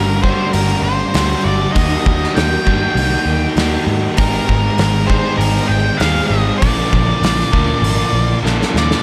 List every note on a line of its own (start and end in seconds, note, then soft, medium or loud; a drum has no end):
0.00 0.32 G1 medium
0.00 0.21 G2 medium
0.00 0.52 G2 medium
0.00 0.22 D3 medium
0.00 0.53 D3 medium
0.00 0.24 G3 medium
0.00 0.55 G3 medium
0.00 0.23 A#3 medium
0.00 0.22 D4 medium
0.00 0.22 G4 medium
0.00 4.13 G4 medium
0.00 0.22 A#4 medium
0.00 1.72 D5 medium
0.00 1.72 F5 medium
0.00 6.56 A#5 medium
0.22 1.13 G2 medium
0.22 1.13 D3 medium
0.22 1.13 G3 medium
0.22 1.15 A#3 medium
0.22 1.13 D4 medium
0.22 1.12 G4 medium
0.22 0.53 C5 medium
0.22 kick medium
0.53 0.74 G1 medium
0.53 1.14 G2 medium
0.53 1.14 D3 medium
0.53 1.16 G3 medium
0.53 0.83 A#4 medium
0.53 open hi-hat medium
0.82 1.03 G1 medium
0.82 1.46 C5 medium
1.14 1.34 D2 medium
1.14 1.73 G2 medium
1.14 1.74 G2 medium
1.14 1.72 D3 medium
1.14 1.74 D3 medium
1.14 1.72 G3 medium
1.14 1.75 G3 medium
1.14 1.74 A#3 medium
1.14 1.75 D4 medium
1.14 1.75 G4 medium
1.14 snare loud
1.14 open hi-hat medium
1.44 1.65 G1 medium
1.44 1.72 D5 medium
1.72 1.95 D#2 medium
1.72 2.63 D#3 medium
1.72 2.34 D#3 medium
1.72 2.63 G3 medium
1.72 2.67 A#3 medium
1.72 2.36 A#3 medium
1.72 2.66 D#4 loud
1.72 2.64 G4 loud
1.72 4.15 A#4 medium
1.72 2.36 D#5 medium
1.72 6.57 D#5 medium
1.72 kick loud
1.72 open hi-hat medium
1.78 2.37 D#4 medium
2.06 2.25 D#2 medium
2.06 kick medium
2.23 snare soft
2.35 2.56 D#2 medium
2.35 2.96 D#3 medium
2.35 2.98 A#3 medium
2.35 2.98 D#4 medium
2.35 3.83 G5 medium
2.35 snare medium
2.35 open hi-hat soft
2.65 2.86 G2 medium
2.65 3.56 D#3 medium
2.65 3.56 G3 medium
2.65 3.58 A#3 medium
2.65 3.56 D#4 medium
2.65 3.55 G4 medium
2.65 kick medium
2.95 3.15 C2 medium
2.95 3.56 D#3 medium
2.95 3.58 A#3 medium
2.95 3.58 D#4 loud
2.95 open hi-hat medium
3.26 3.46 D#2 medium
3.56 3.76 D#2 medium
3.56 4.16 D#3 medium
3.56 4.16 G3 medium
3.56 4.20 A#3 medium
3.56 4.18 A#3 medium
3.56 4.17 D#4 medium
3.56 snare loud
3.56 open hi-hat soft
3.60 4.18 G4 medium
3.87 4.07 G#2 medium
4.17 4.38 G#1 medium
4.17 5.07 G#2 medium
4.17 4.77 G#2 medium
4.17 5.07 D#3 medium
4.17 4.78 D#3 medium
4.17 5.07 G#3 medium
4.17 4.80 G#3 loud
4.17 5.08 C4 medium
4.17 5.07 D#4 medium
4.17 6.58 G#4 medium
4.17 5.06 G#4 loud
4.17 5.05 A#4 medium
4.17 6.58 C5 medium
4.17 kick loud
4.17 open hi-hat medium
4.49 4.68 G#1 medium
4.49 kick medium
4.78 5.18 G#1 medium
4.78 5.38 G#2 medium
4.78 5.39 D#3 medium
4.78 5.40 G#3 medium
4.78 snare loud
4.78 open hi-hat soft
5.07 5.99 G#2 medium
5.07 5.99 D#3 medium
5.07 5.99 G#3 medium
5.07 5.98 C4 medium
5.07 5.98 D#4 medium
5.07 5.97 G#4 medium
5.07 5.37 C5 medium
5.07 kick medium
5.37 5.58 G#1 medium
5.37 6.01 G#2 medium
5.37 6.02 D#3 loud
5.37 6.03 G#3 loud
5.37 5.70 A#4 medium
5.37 open hi-hat medium
5.67 5.89 G#1 medium
5.67 6.00 G5 loud
5.98 6.20 D#2 medium
5.98 6.59 G#2 medium
5.98 6.60 D#3 medium
5.98 6.27 F5 medium
5.98 snare loud
5.98 open hi-hat medium
6.02 6.60 G#2 medium
6.02 6.61 D#3 medium
6.02 6.60 G#3 medium
6.02 6.61 G#3 medium
6.02 6.61 C4 medium
6.02 6.60 D#4 medium
6.02 6.61 G#4 medium
6.28 6.50 G#1 medium
6.28 6.57 D#5 medium
6.58 7.50 A#2 medium
6.58 7.50 D3 medium
6.58 8.38 D5 medium
6.58 9.02 F5 medium
6.62 6.81 A#1 medium
6.62 7.21 A#2 medium
6.62 7.51 F3 medium
6.62 7.23 F3 medium
6.62 7.51 A#3 medium
6.62 7.24 A#3 medium
6.62 7.51 D4 loud
6.62 9.02 A#4 medium
6.62 7.51 A#4 loud
6.62 9.02 D5 medium
6.62 9.02 C6 medium
6.62 kick loud
6.62 open hi-hat medium
6.93 7.12 A#1 medium
6.93 kick medium
7.22 7.42 A#1 medium
7.22 7.83 A#2 medium
7.22 7.84 F3 medium
7.22 7.85 A#3 medium
7.22 snare loud
7.22 open hi-hat medium
7.40 snare soft
7.52 7.73 D2 medium
7.52 8.41 A#2 medium
7.52 8.42 D3 medium
7.52 8.42 F3 medium
7.52 8.42 A#3 medium
7.52 8.42 D4 medium
7.52 8.41 A#4 medium
7.52 kick medium
7.82 8.02 G#1 medium
7.82 8.44 A#2 medium
7.82 8.45 F3 medium
7.82 open hi-hat soft
7.86 8.46 A#3 loud
8.13 8.32 A#1 medium
8.42 8.63 A#1 medium
8.42 9.01 A#2 medium
8.42 9.03 A#2 medium
8.42 9.02 D3 medium
8.42 9.03 F3 medium
8.42 9.03 A#3 medium
8.42 9.03 D4 medium
8.42 9.03 A#4 medium
8.42 snare medium
8.46 9.03 F3 medium
8.46 9.03 A#3 medium
8.62 snare medium
8.74 8.94 D#2 medium
8.74 9.03 D5 medium
8.74 snare medium
8.91 snare medium